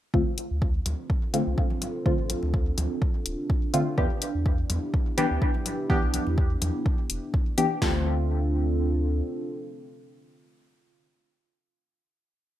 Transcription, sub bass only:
0.14 0.23 D2 medium
0.51 0.80 D2 medium
0.86 0.95 D2 loud
1.47 1.54 C2 loud
2.19 2.34 A1 medium
2.43 2.72 D2 medium
2.78 2.87 D2 loud
3.26 3.35 D1 medium
3.98 4.07 E2 loud
4.35 4.64 E2 medium
4.70 4.79 E2 loud
5.31 5.38 D2 loud
6.03 6.18 B1 medium
6.27 6.56 E2 medium
6.62 6.71 E2 loud
7.10 7.19 E1 medium
7.82 9.22 D2 medium

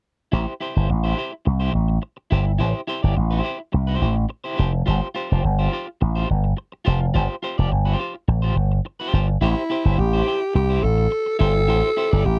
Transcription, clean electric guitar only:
0.32 0.52 E4 medium
0.32 0.53 G4 medium
0.32 0.53 C5 medium
0.60 0.76 E4 medium
0.60 0.75 G4 medium
0.60 0.74 C5 medium
0.75 0.88 E4 soft
0.75 0.88 G4 soft
0.75 0.89 C5 soft
0.89 muted clean electric guitar stroke soft
1.04 1.16 E4 medium
1.04 1.17 G4 medium
1.04 1.18 C5 medium
1.17 1.33 E4 soft
1.17 1.32 G4 medium
1.17 1.31 C5 medium
1.33 muted clean electric guitar stroke soft
1.45 muted clean electric guitar stroke soft
1.60 1.72 E4 medium
1.60 1.73 G4 medium
1.60 1.72 C5 medium
1.73 muted clean electric guitar stroke soft
1.88 muted clean electric guitar stroke soft
2.02 muted clean electric guitar stroke soft
2.17 muted clean electric guitar stroke soft
2.31 2.51 E4 medium
2.31 2.46 G4 medium
2.31 2.44 C5 medium
2.45 muted clean electric guitar stroke soft
2.58 2.79 E4 medium
2.58 2.80 G4 medium
2.58 2.80 C5 medium
2.87 3.03 E4 medium
2.87 3.02 G4 medium
2.87 3.02 C5 medium
3.03 3.14 E4 soft
3.03 3.15 G4 medium
3.03 3.16 D5 medium
3.16 muted clean electric guitar stroke soft
3.31 3.42 E4 medium
3.31 3.43 G4 medium
3.31 3.44 C5 medium
3.43 3.60 E4 medium
3.43 3.59 G4 medium
3.43 3.57 C5 medium
3.59 muted clean electric guitar stroke soft
3.72 muted clean electric guitar stroke soft
3.87 3.99 E4 medium
3.87 4.01 G4 medium
3.87 4.01 C5 medium
4.00 4.17 E4 medium
4.00 4.16 G4 medium
4.00 4.15 C5 medium
4.16 muted clean electric guitar stroke soft
4.29 muted clean electric guitar stroke soft
4.44 4.56 E4 medium
4.44 4.57 G4 medium
4.44 4.57 C5 medium
4.57 4.74 E4 medium
4.57 4.72 G4 medium
4.57 4.71 C5 medium
4.73 muted clean electric guitar stroke soft
4.86 5.06 F4 medium
4.86 5.07 G4 medium
4.86 5.07 C5 medium
5.15 5.30 F4 medium
5.15 5.29 G4 medium
5.15 5.28 C5 medium
5.29 5.42 F4 soft
5.29 5.43 G4 soft
5.29 5.43 C5 soft
5.43 muted clean electric guitar stroke soft
5.59 5.71 F4 medium
5.59 5.72 G4 medium
5.59 5.72 C5 medium
5.72 5.88 F4 medium
5.72 5.87 G4 medium
5.72 5.86 C5 medium
5.87 muted clean electric guitar stroke soft
6.01 muted clean electric guitar stroke soft
6.16 6.28 F4 medium
6.16 6.28 G4 medium
6.16 6.29 C5 medium
6.29 muted clean electric guitar stroke soft
6.44 muted clean electric guitar stroke soft
6.57 muted clean electric guitar stroke soft
6.72 muted clean electric guitar stroke soft
6.85 7.05 F4 medium
6.85 7.00 G4 medium
6.85 7.00 C5 medium
7.01 muted clean electric guitar stroke soft
7.14 7.34 F4 medium
7.14 7.34 G4 medium
7.14 7.35 C5 medium
7.43 7.58 F4 medium
7.43 7.58 G4 medium
7.43 7.57 C5 medium
7.58 7.69 F4 soft
7.58 7.70 G4 soft
7.58 7.72 D5 medium
7.71 muted clean electric guitar stroke soft
7.85 7.97 F4 medium
7.85 7.98 G4 medium
7.85 7.99 C5 medium
7.99 8.15 F4 medium
7.99 8.14 G4 medium
7.99 8.13 C5 medium
8.15 muted clean electric guitar stroke medium
8.28 muted clean electric guitar stroke soft
8.42 8.55 F4 medium
8.42 8.56 G4 medium
8.42 8.56 C5 medium
8.56 muted clean electric guitar stroke soft
8.72 muted clean electric guitar stroke soft
8.85 muted clean electric guitar stroke soft
9.00 9.12 F4 medium
9.00 9.13 G4 medium
9.00 9.13 C5 medium
9.13 9.29 F4 medium
9.13 9.28 G4 medium
9.13 9.27 C5 medium
9.28 muted clean electric guitar stroke medium
9.41 9.61 E4 medium
9.41 9.62 G4 loud
9.41 9.62 C5 medium
9.70 9.85 E4 medium
9.70 9.85 G4 medium
9.70 9.84 C5 medium
9.85 9.97 E4 soft
9.85 9.98 G4 soft
9.85 9.98 C5 soft
9.98 muted clean electric guitar stroke soft
10.13 10.25 E4 medium
10.13 10.26 G4 medium
10.13 10.27 C5 medium
10.27 10.42 E4 medium
10.27 10.41 G4 medium
10.27 10.40 C5 medium
10.41 muted clean electric guitar stroke soft
10.54 muted clean electric guitar stroke soft
10.70 10.82 E4 medium
10.70 10.83 G4 medium
10.70 10.83 C5 medium
10.83 muted clean electric guitar stroke soft
10.98 muted clean electric guitar stroke soft
11.11 muted clean electric guitar stroke soft
11.26 muted clean electric guitar stroke soft
11.39 11.59 E4 medium
11.39 11.55 G4 medium
11.39 11.53 C5 loud
11.55 muted clean electric guitar stroke soft
11.68 11.88 E4 medium
11.68 11.88 G4 medium
11.68 11.89 C5 medium
11.97 12.12 E4 medium
11.97 12.11 G4 medium
11.97 12.11 C5 medium
12.12 12.24 E4 soft
12.12 12.24 G4 soft
12.12 12.26 D5 medium
12.25 muted clean electric guitar stroke soft

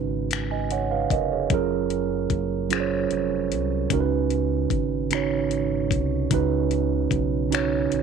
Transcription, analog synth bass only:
0.00 1.07 G#1 medium
1.11 1.47 F1 medium
1.51 2.27 F#1 medium
2.31 3.07 F#1 medium
3.12 3.53 F1 medium
3.52 3.87 C2 medium
3.91 4.67 C#2 medium
4.71 5.93 G#1 medium
5.92 6.27 C2 medium
6.32 7.07 C#2 loud
7.12 7.87 B1 medium
7.93 8.03 A#1 medium

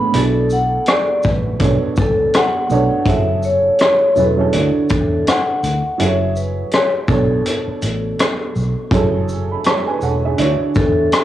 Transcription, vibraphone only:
0.00 0.15 B5 loud
0.16 0.52 A4 loud
0.52 0.89 F#5 medium
0.89 1.25 D5 loud
1.25 2.30 B4 medium
2.00 2.36 A4 medium
2.36 3.10 F#5 loud
3.09 3.45 E5 loud
3.45 3.81 C#5 medium
3.82 4.18 C#5 medium
4.18 4.90 A4 medium
4.91 5.27 A4 medium
5.28 6.02 F#5 loud
6.00 6.37 E5 medium
6.37 6.74 B4 medium
6.74 6.90 C#5 medium
7.10 8.51 A4 medium
10.76 11.24 A4 medium

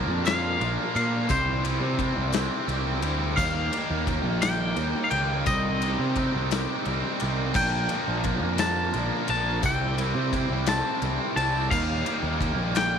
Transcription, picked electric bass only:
0.08 0.56 F2 medium
0.60 0.76 A#1 medium
0.95 1.27 A#2 medium
1.30 1.78 C2 loud
1.81 2.12 C3 medium
2.16 2.48 C2 medium
2.68 3.03 C2 loud
3.03 3.34 D2 medium
3.38 3.69 D#2 loud
3.90 4.25 D#2 medium
4.25 4.73 A#1 medium
4.77 4.92 D#2 loud
5.12 5.43 C#2 medium
5.47 5.95 C2 loud
5.99 6.30 C3 medium
6.35 6.65 C2 medium
6.86 7.01 C2 medium
7.22 7.52 C2 medium
7.55 7.86 A#1 loud
8.08 8.43 A#1 medium
8.43 8.90 F2 medium
8.94 9.09 A#1 medium
9.29 9.60 A#1 medium
9.63 10.11 C2 loud
10.15 10.46 C3 loud
10.50 10.81 C2 medium
11.02 11.17 C2 medium
11.36 11.67 C2 medium
11.71 12.02 D#2 loud
12.23 12.57 D#2 loud
12.57 12.99 A#1 medium

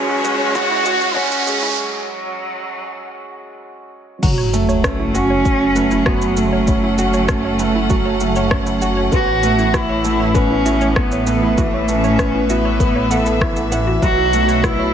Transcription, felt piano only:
0.00 0.11 F#3 loud
0.00 0.24 G#3 loud
0.00 0.55 C#4 medium
0.24 0.54 G#3 loud
0.55 0.84 C#4 loud
0.86 1.03 F#4 loud
1.16 1.46 C#4 medium
1.47 1.65 G#3 loud
4.23 4.40 F#3 medium
4.53 4.83 A3 loud
4.84 5.13 C#4 loud
5.15 5.32 F#4 loud
5.45 5.74 C#4 medium
5.75 5.93 A3 loud
6.06 6.24 F#3 loud
6.37 6.66 A3 medium
6.68 6.97 C#4 medium
6.98 7.16 F#4 loud
7.29 7.58 C#4 medium
7.59 7.77 A3 loud
7.90 8.08 F#3 loud
8.21 8.50 A3 loud
8.51 8.80 C#4 medium
8.82 8.99 F#4 loud
9.12 9.41 B3 medium
9.43 9.60 A3 loud
9.74 9.91 E3 medium
10.04 10.34 A3 loud
10.35 10.64 B3 loud
10.65 10.83 E4 loud
10.96 11.25 B3 medium
11.26 11.44 A3 loud
11.58 11.75 E3 loud
11.88 12.17 A3 loud
12.19 12.48 B3 medium
12.49 12.67 E4 loud
12.80 13.09 B3 medium
13.11 13.40 A4 medium
13.41 13.59 E3 loud
13.72 13.89 E3 loud
14.03 14.20 F#3 medium
14.34 14.62 A3 loud
14.64 14.93 B3 medium

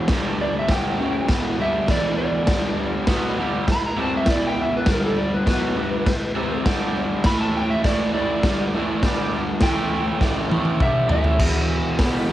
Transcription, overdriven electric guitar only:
0.00 0.11 E2 medium
0.00 0.11 B2 loud
0.00 0.12 E3 loud
0.11 0.67 G2 loud
0.11 0.68 D3 loud
0.11 0.69 G3 loud
0.68 0.98 G2 medium
0.68 0.99 D3 loud
0.68 0.99 G3 loud
0.98 1.28 F#2 medium
0.98 1.28 C#3 loud
0.98 1.29 F#3 loud
1.28 1.58 E2 loud
1.28 1.58 B2 loud
1.28 1.59 E3 loud
1.59 1.87 G2 medium
1.59 1.88 D3 loud
1.59 1.89 G3 medium
1.88 2.47 E2 medium
1.88 2.47 B2 medium
1.88 2.48 E3 loud
2.47 3.07 G2 loud
2.47 3.07 D3 loud
2.47 3.08 G3 loud
3.07 3.37 B2 medium
3.07 3.37 F#3 medium
3.07 3.38 B3 loud
3.37 3.67 G2 loud
3.37 3.67 D3 medium
3.37 3.68 G3 loud
3.69 muted overdriven electric guitar stroke medium
3.97 4.26 C3 medium
3.97 4.27 G3 medium
3.97 4.27 C4 medium
4.28 4.86 E2 medium
4.28 4.87 B2 medium
4.28 4.87 E3 loud
4.87 5.46 G2 medium
4.87 5.45 D3 loud
4.87 5.46 G3 loud
5.45 5.75 B2 loud
5.45 5.76 F#3 loud
5.45 5.76 B3 loud
5.77 6.06 G2 medium
5.77 6.06 D3 loud
5.77 6.06 G3 medium
6.07 muted overdriven electric guitar stroke medium
6.35 6.64 C3 medium
6.35 6.65 G3 medium
6.35 6.65 C4 loud
6.64 7.24 G2 medium
6.64 7.24 D3 loud
6.64 7.25 G3 loud
7.26 7.83 A2 loud
7.26 7.84 E3 loud
7.26 7.84 A3 loud
7.84 8.13 A2 medium
7.84 8.13 E3 loud
7.84 8.14 A3 loud
8.14 8.43 A2 medium
8.14 8.44 E3 loud
8.14 8.44 A3 loud
8.43 8.73 G2 loud
8.43 8.73 D3 loud
8.43 8.73 G3 loud
8.74 9.03 A2 medium
8.74 9.03 E3 loud
8.74 9.04 A3 loud
9.02 9.62 G2 medium
9.02 9.62 D3 medium
9.02 9.62 G3 loud
9.62 10.19 A2 loud
9.62 10.20 E3 loud
9.62 10.21 A3 loud
10.20 10.49 A2 medium
10.20 10.49 E3 loud
10.20 10.50 A3 loud
10.50 10.80 A2 medium
10.50 10.80 E3 loud
10.50 10.81 A3 loud
10.81 11.10 G2 loud
10.81 11.09 D3 loud
10.81 11.09 G3 loud
11.09 11.39 A2 medium
11.09 11.39 E3 loud
11.09 11.40 A3 medium
11.39 11.98 E2 loud
11.39 11.98 B2 medium
11.39 11.99 E3 loud
11.98 12.28 E2 medium
11.98 12.28 B2 medium
11.98 12.30 E3 medium
12.29 12.32 E2 medium
12.29 12.32 B2 medium

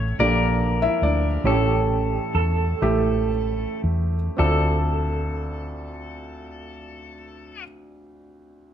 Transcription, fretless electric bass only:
0.00 0.12 A1 medium
0.19 0.86 A#1 medium
1.02 1.37 D2 medium
1.44 2.17 A1 medium
2.35 2.73 E2 medium
2.82 3.64 A1 medium
3.84 4.28 E2 medium
4.39 7.63 D2 medium

